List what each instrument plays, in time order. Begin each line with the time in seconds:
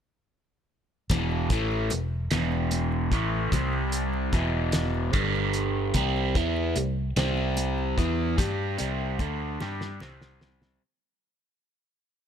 1.10 fingered electric bass E1, overdriven electric guitar E2 B2 E3, kick, closed hi-hat, high conga, low conga
1.31 low conga
1.50 fingered electric bass A1, overdriven electric guitar A2 E3 A3, kick, closed hi-hat
1.72 low conga
1.90 fingered electric bass E1, overdriven electric guitar E2 B2, closed hi-hat, high conga, low conga
2.31 fingered electric bass E1, overdriven electric guitar E2 B2 E3, snare, closed hi-hat, low conga
2.52 low conga
2.71 closed hi-hat, high conga
2.92 low conga
3.11 fingered electric bass A1, overdriven electric guitar A2 E3 A3, kick, closed hi-hat
3.52 fingered electric bass C2, overdriven electric guitar C3 G3 C4, kick, closed hi-hat, high conga, low conga
3.73 low conga
3.92 closed hi-hat
4.13 low conga
4.32 fingered electric bass E1, overdriven electric guitar E2 B2 E3, kick, closed hi-hat, high conga, low conga
4.72 snare, closed hi-hat, low conga
4.94 low conga
5.13 fingered electric bass G1, overdriven electric guitar G2 D3 G3, kick, closed hi-hat, low conga
5.36 low conga
5.53 closed hi-hat
5.94 fingered electric bass C2, overdriven electric guitar C3 G3 C4, kick, closed hi-hat, high conga, low conga
6.16 low conga
6.35 fingered electric bass E2, overdriven electric guitar E3 B3 E4, kick, closed hi-hat
6.57 low conga
6.75 fingered electric bass C2, overdriven electric guitar C3 G3, closed hi-hat, high conga, low conga
7.16 fingered electric bass C2, overdriven electric guitar C3 G3 C4, snare, closed hi-hat, low conga
7.37 low conga
7.57 closed hi-hat, high conga, low conga
7.78 low conga
7.97 fingered electric bass E2, overdriven electric guitar E3 B3 E4, kick, closed hi-hat
8.38 overdriven electric guitar G3 D4 G4, kick, closed hi-hat, high conga, low conga
8.78 fingered electric bass C2, overdriven electric guitar C3 G3 C4, closed hi-hat, low conga
9.19 fingered electric bass D2, overdriven electric guitar D3 A3 D4, kick, closed hi-hat, high conga, low conga
9.60 fingered electric bass G2, overdriven electric guitar G3 D4 G4, snare, low conga
9.81 snare
10.00 fingered electric bass C2, overdriven electric guitar C3 G3 C4, snare, high conga, low conga
10.21 snare, low conga
10.41 snare
10.62 snare